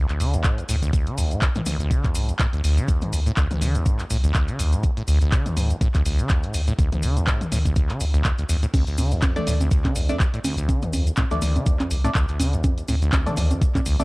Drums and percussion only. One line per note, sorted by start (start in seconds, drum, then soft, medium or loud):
0.09 clap soft
0.09 closed hi-hat soft
0.09 maracas soft
0.20 open hi-hat loud
0.20 maracas medium
0.34 closed hi-hat soft
0.34 maracas soft
0.44 kick loud
0.44 clap loud
0.44 closed hi-hat medium
0.44 maracas medium
0.58 closed hi-hat soft
0.58 maracas soft
0.69 open hi-hat medium
0.69 maracas medium
0.82 closed hi-hat soft
0.82 maracas soft
0.93 kick loud
0.93 closed hi-hat medium
0.93 maracas medium
1.07 closed hi-hat soft
1.07 maracas soft
1.18 open hi-hat loud
1.18 maracas medium
1.31 closed hi-hat soft
1.31 maracas soft
1.42 kick loud
1.42 clap loud
1.42 closed hi-hat medium
1.42 maracas medium
1.55 closed hi-hat soft
1.55 mid tom medium
1.55 maracas soft
1.66 open hi-hat medium
1.66 mid tom medium
1.66 maracas medium
1.80 closed hi-hat soft
1.80 maracas soft
1.91 kick loud
1.91 closed hi-hat medium
1.91 maracas medium
2.04 kick medium
2.04 clap soft
2.04 closed hi-hat soft
2.04 maracas soft
2.15 open hi-hat loud
2.15 maracas loud
2.29 closed hi-hat soft
2.29 maracas soft
2.39 kick loud
2.39 clap loud
2.39 closed hi-hat medium
2.39 maracas medium
2.53 closed hi-hat soft
2.53 maracas soft
2.64 open hi-hat medium
2.64 maracas medium
2.78 closed hi-hat soft
2.78 maracas soft
2.88 kick loud
2.88 closed hi-hat medium
2.88 maracas soft
3.01 closed hi-hat soft
3.01 mid tom medium
3.01 maracas soft
3.13 open hi-hat loud
3.13 maracas medium
3.26 closed hi-hat soft
3.26 maracas soft
3.37 kick loud
3.37 clap loud
3.37 closed hi-hat medium
3.37 maracas soft
3.51 closed hi-hat soft
3.51 mid tom medium
3.51 maracas soft
3.62 open hi-hat medium
3.62 mid tom medium
3.62 maracas medium
3.75 closed hi-hat soft
3.75 maracas soft
3.86 kick loud
3.86 closed hi-hat medium
3.86 maracas medium
3.99 clap soft
3.99 closed hi-hat soft
3.99 maracas soft
4.10 open hi-hat loud
4.10 maracas medium
4.24 closed hi-hat soft
4.24 maracas soft
4.34 kick loud
4.34 clap loud
4.34 closed hi-hat medium
4.34 maracas medium
4.48 closed hi-hat soft
4.48 maracas soft
4.59 open hi-hat medium
4.59 maracas medium
4.73 closed hi-hat soft
4.73 maracas soft
4.83 kick loud
4.83 closed hi-hat medium
4.83 maracas soft
4.97 closed hi-hat soft
4.97 maracas soft
5.07 open hi-hat loud
5.07 maracas medium
5.21 closed hi-hat soft
5.21 maracas soft
5.32 kick loud
5.32 clap loud
5.32 closed hi-hat medium
5.32 maracas soft
5.46 closed hi-hat soft
5.46 mid tom medium
5.46 maracas soft
5.57 open hi-hat medium
5.57 mid tom medium
5.57 maracas medium
5.70 closed hi-hat soft
5.70 maracas soft
5.81 kick loud
5.81 closed hi-hat medium
5.81 maracas soft
5.94 kick medium
5.94 clap soft
5.94 closed hi-hat soft
5.94 maracas soft
6.06 open hi-hat loud
6.06 maracas medium
6.19 closed hi-hat soft
6.19 maracas soft
6.29 kick loud
6.29 clap loud
6.29 closed hi-hat medium
6.29 maracas soft
6.43 closed hi-hat soft
6.43 maracas soft
6.54 open hi-hat medium
6.54 maracas medium
6.67 closed hi-hat soft
6.67 maracas soft
6.79 kick loud
6.79 closed hi-hat medium
6.79 maracas soft
6.92 closed hi-hat soft
6.92 mid tom medium
6.92 maracas soft
7.02 open hi-hat loud
7.02 maracas medium
7.17 closed hi-hat soft
7.17 maracas soft
7.27 kick loud
7.27 clap loud
7.27 closed hi-hat medium
7.27 maracas soft
7.41 closed hi-hat soft
7.41 mid tom medium
7.41 maracas soft
7.52 open hi-hat medium
7.52 mid tom medium
7.52 maracas medium
7.65 kick medium
7.65 closed hi-hat soft
7.65 maracas soft
7.76 kick loud
7.76 closed hi-hat medium
7.76 maracas soft
7.89 clap soft
7.89 closed hi-hat soft
7.89 maracas soft
8.00 open hi-hat loud
8.00 maracas medium
8.14 closed hi-hat soft
8.14 maracas soft
8.24 kick loud
8.24 clap loud
8.24 closed hi-hat medium
8.24 maracas medium
8.38 closed hi-hat soft
8.38 maracas soft
8.49 open hi-hat medium
8.49 maracas medium
8.63 closed hi-hat soft
8.63 maracas soft
8.74 kick loud
8.74 closed hi-hat medium
8.74 crash medium
8.74 high conga medium
8.74 maracas soft
8.87 closed hi-hat soft
8.87 maracas soft
8.98 open hi-hat loud
8.98 high conga soft
8.98 maracas medium
9.11 closed hi-hat soft
9.11 maracas soft
9.22 kick loud
9.22 clap loud
9.22 closed hi-hat medium
9.22 high conga medium
9.22 maracas soft
9.36 closed hi-hat soft
9.36 mid tom medium
9.36 maracas soft
9.47 open hi-hat medium
9.47 mid tom medium
9.47 maracas medium
9.61 closed hi-hat soft
9.61 high conga soft
9.61 maracas soft
9.71 kick loud
9.71 closed hi-hat medium
9.71 maracas medium
9.84 kick medium
9.84 clap soft
9.84 closed hi-hat soft
9.84 high conga medium
9.84 maracas soft
9.95 open hi-hat loud
9.95 maracas medium
10.09 closed hi-hat soft
10.09 high conga soft
10.09 maracas soft
10.20 kick loud
10.20 clap loud
10.20 closed hi-hat medium
10.20 maracas medium
10.34 closed hi-hat soft
10.34 maracas soft
10.44 open hi-hat medium
10.44 high conga medium
10.44 maracas medium
10.58 closed hi-hat soft
10.58 maracas soft
10.69 kick loud
10.69 closed hi-hat medium
10.69 high conga medium
10.69 maracas medium
10.82 closed hi-hat soft
10.82 mid tom medium
10.82 maracas soft
10.93 open hi-hat loud
10.93 high conga soft
10.93 maracas medium
11.07 closed hi-hat soft
11.07 maracas soft
11.17 kick loud
11.17 clap loud
11.17 closed hi-hat medium
11.17 high conga medium
11.17 maracas medium
11.31 closed hi-hat soft
11.31 mid tom medium
11.31 maracas soft
11.42 open hi-hat medium
11.42 mid tom medium
11.42 maracas loud
11.56 closed hi-hat soft
11.56 high conga soft
11.56 maracas soft
11.66 kick loud
11.66 closed hi-hat medium
11.66 maracas medium
11.80 clap soft
11.80 closed hi-hat soft
11.80 high conga medium
11.80 maracas soft
11.91 open hi-hat loud
11.91 maracas medium
12.04 closed hi-hat soft
12.04 high conga soft
12.04 maracas soft
12.15 kick loud
12.15 clap loud
12.15 closed hi-hat medium
12.15 maracas soft
12.28 closed hi-hat soft
12.28 maracas soft
12.40 open hi-hat medium
12.40 high conga medium
12.40 maracas medium
12.53 closed hi-hat soft
12.53 maracas soft
12.64 kick loud
12.64 closed hi-hat medium
12.64 high conga medium
12.64 maracas medium
12.78 closed hi-hat soft
12.78 maracas soft
12.88 open hi-hat loud
12.88 high conga soft
12.88 maracas medium
13.02 closed hi-hat soft
13.02 maracas soft
13.12 kick loud
13.12 clap loud
13.12 closed hi-hat medium
13.12 high conga medium
13.12 maracas medium
13.26 closed hi-hat soft
13.26 mid tom medium
13.26 maracas soft
13.37 open hi-hat medium
13.37 mid tom medium
13.37 maracas loud
13.51 closed hi-hat soft
13.51 high conga soft
13.51 maracas soft
13.62 kick loud
13.62 closed hi-hat medium
13.62 maracas medium
13.75 kick medium
13.75 clap soft
13.75 closed hi-hat soft
13.75 high conga medium
13.75 maracas soft
13.86 open hi-hat loud
13.86 maracas loud
14.00 closed hi-hat soft
14.00 high conga soft
14.00 maracas soft